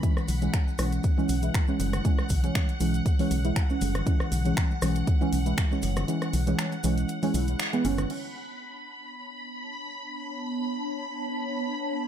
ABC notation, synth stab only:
X:1
M:4/4
L:1/16
Q:"Swing 16ths" 1/4=119
K:Bdor
V:1 name="Synth stab" clef=bass
[E,G,C]3 [E,G,C]2 z [E,G,C]3 [E,G,C] z [E,G,E]2 [E,G,C]3 | [E,G,C]3 [E,G,C]2 z [E,G,C]3 [E,G,C] z [E,G,E]2 [E,G,C]3 | [E,G,C]3 [E,G,C]2 z [E,G,C]3 [E,G,C] z [E,G,E]2 [E,G,C]3 | [E,G,C]3 [E,G,C]2 z [E,G,C]3 [E,G,C] [E,G,E]3 [E,G,B,] [E,G,C] z |
z16 | z16 |]